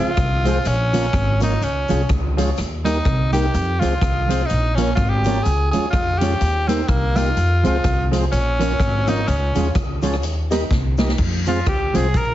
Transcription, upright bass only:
0.00 0.14 C#2 medium
0.17 0.58 C2 medium
0.65 1.06 A#1 medium
1.14 1.54 G#1 loud
1.61 1.85 C#2 medium
1.90 2.06 C2 medium
2.09 2.50 C#2 loud
2.58 2.99 D#2 loud
3.05 3.46 C2 medium
3.54 3.78 F2 loud
3.83 3.99 C#2 medium
4.02 4.42 C2 medium
4.51 4.91 A#1 medium
4.97 5.38 G#1 loud
5.46 5.69 C#2 loud
5.74 5.90 D#2 medium
5.93 6.34 F2 medium
6.41 6.82 D#2 loud
6.88 7.29 C2 medium
7.37 7.61 F2 loud
7.65 7.81 C#2 medium
7.84 8.25 C2 medium
8.32 8.73 A#1 loud
8.80 9.20 G#1 medium
9.28 9.52 C#2 loud
9.56 9.73 D#2 medium
9.75 10.23 C#2 medium
10.23 10.64 D#2 loud
10.71 11.12 C2 medium
11.19 11.59 F2 loud
11.67 11.91 C#2 medium
11.95 12.14 C2 medium
12.14 12.34 A#1 medium

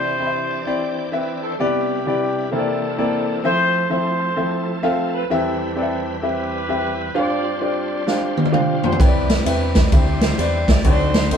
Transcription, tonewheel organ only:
0.00 1.55 E3 medium
0.00 1.55 C4 medium
0.00 1.55 D4 medium
0.00 1.55 D5 medium
0.50 0.65 A5 medium
0.65 1.09 G5 medium
1.12 1.40 E5 medium
1.43 1.58 C5 medium
1.58 2.50 C3 medium
1.58 2.50 G3 medium
1.58 2.50 D4 medium
1.58 1.66 D#4 medium
1.58 2.50 B4 medium
1.64 2.52 E4 medium
2.52 3.43 E3 medium
2.52 3.43 A#3 medium
2.52 3.42 C4 medium
2.52 3.43 D4 medium
2.52 3.43 A4 medium
3.43 5.25 F3 medium
3.43 5.25 A3 medium
3.43 5.25 C4 medium
3.43 3.51 G4 medium
3.49 5.28 A4 medium
5.30 7.11 E2 medium
5.30 7.12 G3 medium
5.30 7.12 C4 medium
5.30 7.12 E4 medium
5.30 5.37 A#4 medium
5.36 7.14 B4 medium
7.14 8.96 G3 medium
7.14 8.96 C4 medium
7.14 8.96 D4 medium
7.14 8.96 F4 medium
7.14 8.96 C5 medium
8.99 10.81 G3 medium
8.99 10.81 C4 medium
8.99 10.81 D4 medium
8.99 10.81 E4 medium
8.99 10.81 D5 medium
10.85 11.37 D3 medium
10.85 11.37 F#3 medium
10.85 11.37 C4 medium
10.85 11.37 D#4 medium
10.85 11.37 A4 medium

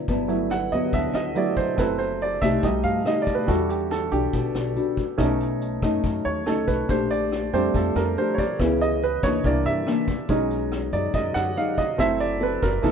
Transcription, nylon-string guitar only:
0.08 0.91 G2 medium
0.08 0.50 F#3 medium
0.08 0.51 B3 medium
0.08 0.51 E4 medium
0.73 1.33 F#3 medium
0.73 1.33 B3 medium
0.73 1.33 E4 medium
0.93 1.76 D3 medium
1.35 1.75 F#3 medium
1.35 1.75 B3 medium
1.35 1.75 E4 medium
1.78 2.41 F#3 medium
1.78 2.39 C4 medium
1.78 2.39 E4 medium
1.78 2.39 A4 medium
2.42 3.02 A3 medium
2.42 3.03 D#4 medium
2.42 3.03 G4 medium
2.63 3.46 B2 medium
3.05 3.45 A3 medium
3.05 3.45 D#4 medium
3.05 3.45 G4 medium
3.48 4.31 E3 medium
3.48 4.09 G3 medium
3.48 4.09 D4 medium
3.48 4.09 F#4 medium
4.11 4.72 G3 medium
4.11 4.72 D4 medium
4.11 4.73 F#4 medium
4.33 5.16 B2 medium
4.76 5.03 G3 medium
4.76 5.04 D4 medium
4.76 5.04 F#4 medium
5.19 6.02 B2 medium
5.19 5.79 A3 medium
5.19 5.79 C#4 medium
5.19 5.79 D#4 medium
5.83 6.43 A3 medium
5.83 6.43 C#4 medium
5.83 6.43 D#4 medium
6.04 6.87 F#3 medium
6.47 6.86 A3 medium
6.47 6.86 C#4 medium
6.47 6.86 D#4 medium
6.89 7.72 A#2 medium
6.89 7.49 A3 medium
6.89 7.49 D4 medium
6.89 7.50 G4 medium
7.54 8.14 A3 medium
7.54 8.14 D4 medium
7.54 8.14 G4 medium
7.75 8.58 F3 medium
8.18 8.44 A3 medium
8.18 8.45 D4 medium
8.18 8.45 G4 medium
8.60 9.43 C#3 medium
8.60 9.02 B3 medium
8.60 9.02 E4 medium
8.60 9.02 G#4 medium
9.24 9.83 E3 medium
9.24 9.83 A#3 medium
9.24 9.84 D4 medium
9.45 10.27 C3 medium
9.86 10.14 E3 medium
9.86 10.14 A#3 medium
9.86 10.14 D4 medium
10.29 11.12 B2 medium
10.29 10.89 F#3 medium
10.29 10.89 G#3 medium
10.29 10.90 D#4 medium
10.92 11.53 F#3 medium
10.92 11.53 G#3 medium
10.92 11.53 D#4 medium
11.14 11.97 F#2 medium
11.56 11.84 F#3 medium
11.56 11.84 G#3 medium
11.56 11.84 D#4 medium
11.98 12.81 F#3 medium
11.98 12.38 C4 medium
11.98 12.38 E4 medium
11.98 12.38 A4 medium
12.40 12.69 C4 medium
12.40 12.69 E4 medium
12.40 12.70 A4 medium
12.83 12.92 F3 medium
12.83 12.92 B3 medium
12.83 12.92 D#4 medium
12.83 12.92 A4 medium

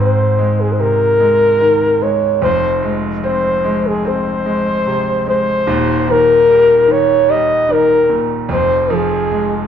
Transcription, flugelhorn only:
0.00 0.62 C5 medium
0.61 0.74 G#4 medium
0.73 0.82 C5 medium
0.80 2.04 A#4 loud
2.03 2.42 C#5 loud
2.44 2.93 C5 loud
3.25 3.88 C5 loud
3.87 4.10 G#4 medium
4.08 5.28 C5 loud
5.29 6.13 C5 loud
6.11 6.93 A#4 loud
6.92 7.32 C#5 loud
7.31 7.74 D#5 loud
7.72 8.25 A#4 loud
8.53 8.95 C5 loud
8.94 9.67 G#4 loud

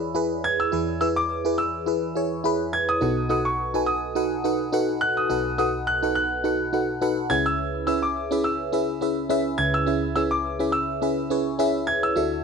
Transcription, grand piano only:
0.00 0.11 E6 medium
0.44 0.59 G#6 loud
0.60 0.99 E6 loud
1.01 1.06 E6 loud
1.16 1.59 D6 loud
1.58 2.40 E6 loud
2.73 2.89 G#6 loud
2.89 3.27 D#6 loud
3.30 3.46 D#6 medium
3.45 3.88 C#6 loud
3.86 4.68 D#6 loud
5.01 5.17 F#6 loud
5.17 5.57 D#6 medium
5.58 5.85 D#6 loud
5.87 5.93 F#6 loud
6.15 6.69 F#6 loud
7.30 7.46 G#6 loud
7.46 7.85 E6 loud
7.87 8.02 E6 medium
8.03 8.45 D6 medium
8.44 9.26 E6 medium
9.58 9.74 G#6 loud
9.74 10.14 E6 loud
10.16 10.21 E6 loud
10.31 10.74 D6 loud
10.72 11.54 E6 loud
11.87 12.03 G#6 loud
12.03 12.43 E6 loud

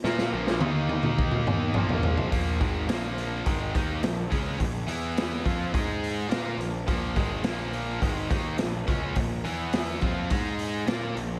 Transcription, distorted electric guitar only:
0.04 0.32 A#3 medium
0.04 0.32 F4 loud
0.04 0.32 A#4 medium
0.32 0.60 A#2 medium
0.32 0.60 F3 medium
0.32 0.60 A#3 medium
0.61 1.74 D#3 medium
0.61 1.74 A#3 loud
0.61 1.75 D#4 loud
1.76 2.30 A#2 medium
1.76 2.31 F3 loud
1.76 2.31 A#3 medium
2.32 2.59 A#2 medium
2.32 2.59 F3 medium
2.32 2.59 A#3 medium
2.60 2.87 G#2 medium
2.60 2.87 D#3 medium
2.60 2.87 G#3 medium
2.87 3.44 A#2 loud
2.87 3.44 F3 medium
2.87 3.44 A#3 loud
3.45 3.73 G#2 medium
3.45 3.72 D#3 medium
3.45 3.73 G#3 loud
3.73 4.01 D#3 medium
3.73 4.01 A#3 medium
3.73 4.02 D#4 medium
4.01 4.24 A#2 medium
4.01 4.25 F3 medium
4.30 4.58 C#3 medium
4.30 4.59 G#3 medium
4.30 4.59 C#4 medium
4.59 4.82 A#2 medium
4.59 4.82 F3 medium
4.88 5.44 E3 medium
4.88 5.44 B3 medium
4.88 5.45 E4 medium
5.44 5.72 F3 medium
5.44 5.73 C4 medium
5.44 5.73 F4 medium
5.74 6.29 G#3 medium
5.74 6.30 D#4 medium
5.74 6.30 G#4 loud
6.29 6.58 A#3 medium
6.29 6.58 F4 medium
6.29 6.58 A#4 medium
6.59 6.82 A#2 soft
6.59 6.82 F3 medium
6.87 7.15 A#2 medium
6.87 7.15 F3 medium
6.87 7.15 A#3 medium
7.15 7.43 G#2 medium
7.15 7.43 D#3 medium
7.15 7.44 G#3 loud
7.44 8.01 A#2 medium
7.44 8.01 F3 medium
7.44 8.01 A#3 loud
8.01 8.29 G#2 medium
8.01 8.29 D#3 loud
8.01 8.30 G#3 loud
8.30 8.58 D#3 medium
8.30 8.58 A#3 medium
8.30 8.58 D#4 medium
8.58 8.81 A#2 medium
8.58 8.82 F3 medium
8.87 9.15 C#3 medium
8.87 9.15 G#3 medium
8.87 9.15 C#4 medium
9.16 9.39 A#2 medium
9.16 9.39 F3 medium
9.44 10.01 E3 medium
9.44 10.01 B3 medium
9.44 10.01 E4 medium
10.01 10.29 F3 medium
10.01 10.29 C4 medium
10.01 10.29 F4 medium
10.30 10.86 G#3 medium
10.30 10.87 D#4 medium
10.30 10.87 G#4 medium
10.88 11.15 A#3 medium
10.88 11.15 F4 medium
10.88 11.15 A#4 medium
11.16 11.39 A#2 soft
11.16 11.39 F3 medium

